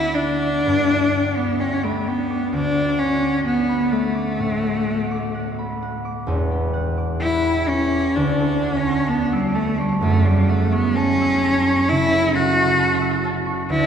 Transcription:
0.00 0.67 D2 medium
0.00 2.29 D4 soft
0.00 0.16 E4 loud
0.00 2.74 F#4 soft
0.00 0.68 E5 medium
0.00 0.17 F#5 medium
0.00 1.83 B5 medium
0.00 0.41 D6 medium
0.15 1.38 D4 medium
0.15 1.12 F#5 medium
0.42 1.36 D6 medium
0.66 2.57 G2 medium
0.89 2.57 G4 medium
1.13 2.97 F#5 medium
1.37 1.62 B3 medium
1.37 2.29 D6 medium
1.60 1.85 C#4 medium
1.60 2.06 G5 medium
1.83 2.09 A3 medium
1.83 3.68 B5 medium
2.07 2.55 B3 medium
2.07 2.57 G5 medium
2.30 3.21 D6 soft
2.53 6.32 D2 medium
2.53 3.00 D4 medium
2.75 4.61 F#4 soft
2.98 3.45 C#4 medium
2.98 3.44 F#5 medium
3.22 4.13 D6 medium
3.45 3.94 B3 medium
3.45 3.90 F#5 medium
3.69 5.57 B5 medium
3.91 5.82 A3 medium
3.91 4.85 F#5 medium
4.14 5.10 D6 medium
4.39 6.31 A2 soft
4.62 8.52 F#4 soft
4.86 5.33 F#5 medium
5.11 6.03 D6 medium
5.34 5.81 F#5 medium
5.59 7.42 B5 medium
5.82 6.72 F#5 medium
6.05 6.96 D6 medium
6.27 8.19 E1 medium
6.27 8.20 E2 medium
6.51 8.20 G4 soft
6.74 8.62 F#5 medium
6.98 7.91 D6 medium
7.20 7.70 E4 medium
7.20 7.67 G5 medium
7.44 8.19 B5 medium
7.68 8.17 C#4 medium
7.68 8.20 G5 medium
7.92 10.05 D6 medium
8.16 10.06 D2 medium
8.16 8.78 D4 medium
8.40 10.24 A4 medium
8.63 10.48 F#5 medium
8.77 9.10 C#4 medium
8.87 9.78 C#6 medium
9.08 9.34 B3 medium
9.08 9.54 A5 medium
9.32 9.56 G3 medium
9.32 11.20 E6 medium
9.54 9.79 A3 medium
9.54 10.95 A5 medium
9.78 10.01 G3 medium
9.78 10.71 C#6 soft
10.01 13.73 F#1 medium
10.01 13.73 F#2 medium
10.01 10.26 A3 medium
10.25 10.50 G3 medium
10.25 12.11 A4 medium
10.49 10.74 A3 medium
10.49 12.33 F#5 medium
10.72 10.97 B3 medium
10.72 11.66 C#6 medium
10.96 11.90 C#4 loud
10.96 11.42 A5 medium
11.21 13.00 E6 medium
11.43 12.78 A5 medium
11.67 12.55 C#6 medium
11.89 13.74 C#3 medium
11.89 12.36 E4 loud
12.12 13.87 A4 medium
12.34 13.24 F#4 medium
12.34 13.87 F#5 medium
12.56 13.45 C#6 medium
12.79 13.24 A5 medium
13.01 13.87 E6 medium
13.25 13.87 A5 medium
13.46 13.87 C#6 medium
13.70 13.87 D2 medium
13.70 13.87 E4 loud

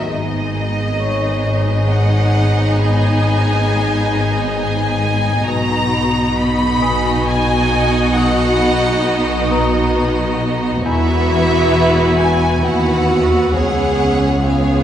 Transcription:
0.00 1.41 A#4 soft
0.00 1.41 A#5 soft
0.10 5.44 G#1 soft
0.10 0.37 G#2 soft
0.10 5.44 G#2 soft
0.10 5.44 B3 soft
0.10 5.44 D#4 soft
0.10 5.44 G#4 soft
0.10 5.44 D#5 soft
0.10 1.90 D#5 soft
0.56 0.82 G#3 soft
1.00 1.27 G#3 soft
1.00 3.65 C#5 soft
1.00 3.65 C#6 soft
1.45 1.72 G#2 soft
1.89 2.16 G#2 soft
1.89 2.80 F#5 medium
2.35 2.62 G#2 soft
2.79 3.06 G#2 soft
2.79 4.56 G#5 medium
2.79 5.44 B5 soft
3.24 3.51 G#3 soft
3.69 3.96 G#3 soft
4.14 4.41 G#2 soft
4.57 4.85 G#2 soft
4.57 5.46 G#5 medium
5.03 5.30 G#2 soft
5.47 10.81 B1 soft
5.47 10.81 B2 soft
5.47 5.75 B2 soft
5.47 10.81 B3 soft
5.47 10.81 D#4 soft
5.47 10.81 F#4 soft
5.47 10.81 D#5 soft
5.47 6.37 A#5 medium
5.93 6.20 B3 soft
6.37 6.64 B3 soft
6.37 7.27 B5 medium
6.82 7.09 B2 medium
6.82 9.47 G#5 soft
7.27 7.54 B2 soft
7.27 8.15 G#5 medium
7.72 7.99 B2 soft
8.17 8.44 B2 medium
8.17 9.52 F#5 medium
8.62 8.89 B3 soft
9.06 9.33 B3 soft
9.51 9.78 B2 medium
9.51 12.16 B4 soft
9.51 12.16 A#5 soft
9.96 10.23 B2 soft
10.41 10.68 B2 soft
10.85 12.61 E1 medium
10.85 12.61 E2 soft
10.85 11.13 E2 medium
10.85 12.61 B3 soft
10.85 12.61 E4 medium
10.85 12.61 F#4 soft
10.85 12.61 B4 soft
10.85 12.16 E5 medium
10.85 13.51 B5 soft
11.31 11.58 E3 soft
11.75 12.02 E3 soft
12.20 12.47 E2 medium
12.20 12.65 G#5 medium
12.65 13.54 D#2 soft
12.65 13.53 B3 soft
12.65 13.09 E4 soft
12.65 13.53 F#4 soft
12.65 13.52 B4 soft
12.65 13.54 F#5 soft
13.09 13.37 E2 soft
13.09 13.54 F#4 soft
13.09 14.83 E6 soft
13.54 14.83 C#2 soft
13.54 13.81 C#3 soft
13.54 14.42 B3 soft
13.54 14.43 G#4 soft
13.54 14.43 C#5 soft
13.54 14.42 F#5 medium
13.99 14.26 C#4 soft
14.44 14.83 B3 soft
14.44 14.71 C#4 soft
14.44 14.83 G#4 soft
14.44 14.83 C#5 soft
14.44 14.83 F5 soft

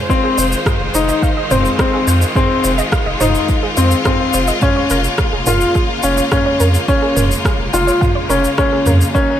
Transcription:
0.00 9.11 G#3 medium
0.00 4.59 C5 medium
0.09 4.59 D#3 medium
0.09 0.43 C4 medium
0.09 9.11 F4 loud
0.09 kick loud
0.09 shaker soft
0.24 0.28 G#4 medium
0.38 0.55 F1 loud
0.38 0.49 C5 medium
0.38 shaker medium
0.52 shaker soft
0.66 0.71 G#4 medium
0.66 kick loud
0.66 cross-stick loud
0.66 mid tom medium
0.66 shaker soft
0.80 0.89 F1 medium
0.94 1.11 F1 loud
0.94 1.28 D#4 medium
0.94 1.02 C5 medium
0.94 shaker medium
1.09 1.20 D#5 medium
1.09 shaker soft
1.22 1.34 F5 medium
1.22 kick loud
1.22 shaker soft
1.37 1.45 D#5 medium
1.51 1.68 F1 medium
1.51 1.68 C4 medium
1.51 1.56 C5 loud
1.51 mid tom medium
1.51 shaker medium
1.65 shaker soft
1.79 2.13 C4 medium
1.79 kick loud
1.79 cross-stick loud
1.79 shaker soft
1.94 1.98 G#4 medium
2.07 2.25 F2 medium
2.07 2.19 C5 medium
2.07 shaker medium
2.22 shaker soft
2.36 2.70 C4 loud
2.36 2.40 G#4 medium
2.36 kick loud
2.36 mid tom medium
2.36 shaker soft
2.64 2.81 F1 medium
2.64 2.72 C5 medium
2.64 shaker medium
2.78 2.90 D#5 medium
2.78 shaker soft
2.92 3.04 F5 medium
2.92 kick loud
2.92 cross-stick medium
2.92 shaker soft
3.06 3.15 F1 loud
3.06 3.14 D#5 medium
3.20 3.38 F1 loud
3.20 3.55 D#4 medium
3.20 3.25 C5 loud
3.20 mid tom medium
3.20 shaker medium
3.35 shaker soft
3.49 kick loud
3.49 shaker soft
3.63 3.68 G#4 medium
3.77 3.95 F2 medium
3.77 3.94 C4 medium
3.77 3.89 C5 medium
3.77 shaker medium
3.91 shaker soft
4.05 4.40 C4 medium
4.05 4.10 G#4 medium
4.05 kick loud
4.05 cross-stick loud
4.05 mid tom medium
4.05 shaker soft
4.33 4.51 F1 medium
4.33 4.42 C5 medium
4.33 shaker medium
4.47 4.59 D#5 medium
4.47 shaker soft
4.62 9.40 C#3 medium
4.62 9.40 A#3 medium
4.62 4.96 C#4 medium
4.62 4.74 F5 medium
4.62 kick loud
4.62 mid tom medium
4.62 shaker soft
4.76 4.84 C#5 medium
4.90 5.08 F1 loud
4.90 4.95 A#4 loud
4.90 shaker medium
5.04 shaker soft
5.18 kick loud
5.18 cross-stick medium
5.18 shaker soft
5.32 5.41 F1 loud
5.32 5.38 G#4 medium
5.46 5.64 F1 loud
5.46 5.81 F4 medium
5.46 5.58 A#4 medium
5.46 mid tom medium
5.46 shaker medium
5.61 shaker soft
5.75 5.80 G#4 medium
5.75 kick loud
5.75 shaker soft
6.03 6.21 F1 medium
6.03 6.20 C#4 medium
6.03 6.11 F5 medium
6.03 shaker medium
6.17 6.29 C#5 medium
6.17 shaker soft
6.32 6.66 C#4 medium
6.32 6.43 F5 medium
6.32 kick loud
6.32 cross-stick medium
6.32 mid tom medium
6.32 shaker soft
6.46 6.54 C#5 medium
6.60 6.78 F2 medium
6.60 6.65 A#4 loud
6.60 shaker medium
6.74 shaker soft
6.88 7.22 C#4 loud
6.88 kick loud
6.88 shaker soft
7.02 7.07 G#4 medium
7.16 7.34 F1 loud
7.16 7.28 A#4 medium
7.16 mid tom medium
7.16 shaker medium
7.31 shaker soft
7.45 7.50 G#4 medium
7.45 kick loud
7.45 cross-stick medium
7.45 shaker soft
7.59 7.68 F1 loud
7.73 7.91 F1 loud
7.73 8.07 F4 medium
7.73 7.81 F5 medium
7.73 shaker medium
7.87 7.99 C#5 medium
7.87 shaker soft
8.01 8.13 F5 medium
8.01 kick loud
8.01 mid tom medium
8.01 shaker soft
8.15 8.23 C#5 medium
8.29 8.47 F1 medium
8.29 8.47 C#4 medium
8.29 8.34 A#4 loud
8.29 shaker medium
8.44 shaker soft
8.58 8.92 C#4 medium
8.58 kick loud
8.58 cross-stick medium
8.58 shaker soft
8.72 8.77 G#4 medium
8.86 9.04 F2 medium
8.86 8.98 A#4 medium
8.86 mid tom medium
8.86 shaker medium
9.01 shaker soft
9.14 9.40 F#3 medium
9.14 9.40 C#4 medium
9.14 9.40 D#4 medium
9.14 9.20 A#4 medium
9.14 kick loud
9.14 shaker soft

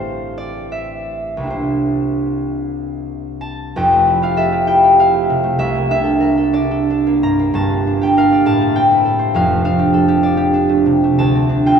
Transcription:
0.00 1.48 A1 medium
0.00 1.49 A3 soft
0.00 3.14 C4 soft
0.00 3.17 G4 medium
0.00 1.55 A4 medium
0.00 1.49 C5 medium
0.00 2.20 G5 medium
0.00 0.21 A5 loud
0.38 1.02 D5 medium
0.72 1.53 E5 medium
1.37 3.70 C2 medium
1.37 3.72 A#3 soft
1.44 3.74 D4 soft
1.44 5.37 F4 soft
1.50 5.40 C5 medium
3.41 3.97 A5 medium
3.76 5.62 F1 medium
3.76 5.63 F2 medium
3.76 4.66 G5 medium
3.93 5.12 A3 medium
4.07 4.66 E4 medium
4.22 4.51 G4 medium
4.22 4.98 F5 medium
4.37 6.02 A4 medium
4.37 5.58 E5 loud
4.52 4.83 G4 medium
4.67 4.98 E4 medium
4.67 8.02 G5 loud
4.84 8.00 G4 medium
4.99 7.57 E4 medium
4.99 5.63 F5 loud
5.14 5.42 A3 medium
5.30 5.62 C3 medium
5.44 7.57 A3 medium
5.59 7.57 C2 medium
5.59 5.90 E5 loud
5.75 7.05 A#3 medium
5.91 6.52 D4 medium
5.91 7.57 E5 loud
6.04 6.36 A4 medium
6.20 8.16 A#4 medium
6.37 6.70 A4 medium
6.53 6.89 D4 medium
6.53 8.31 D5 loud
6.71 7.57 A4 medium
6.90 7.86 D4 medium
7.07 7.38 A#3 medium
7.23 7.53 G2 medium
7.23 8.47 A#5 loud
7.39 7.69 A#3 medium
7.54 8.46 G1 medium
7.54 8.46 G2 medium
7.54 8.31 A5 loud
7.70 8.47 A#3 medium
7.87 8.48 D4 medium
8.01 9.77 G4 medium
8.01 8.74 G5 loud
8.17 8.48 A#4 medium
8.17 8.48 F5 loud
8.32 8.48 D5 medium
8.46 9.37 A2 medium
8.46 11.17 A5 loud
8.61 9.49 A3 medium
8.76 11.34 C4 medium
8.76 11.23 G5 loud
8.91 9.38 E4 medium
9.05 9.92 A4 medium
9.19 11.79 C5 medium
9.34 11.22 F1 medium
9.34 11.23 F2 medium
9.34 9.64 F5 loud
9.50 10.68 A3 medium
9.65 10.22 D4 medium
9.65 11.78 F5 medium
9.79 10.07 G4 medium
9.94 11.80 A4 medium
10.08 10.36 G4 medium
10.23 10.52 D4 medium
10.23 11.80 D5 medium
10.37 11.21 G4 medium
10.54 11.48 D4 medium
10.69 11.02 A3 medium
10.86 11.21 C3 medium
11.04 11.80 A3 medium
11.18 11.80 D2 medium
11.18 11.80 A5 loud
11.35 11.80 C4 medium
11.49 11.80 D4 medium
11.66 11.80 F4 medium
11.66 11.80 G5 loud

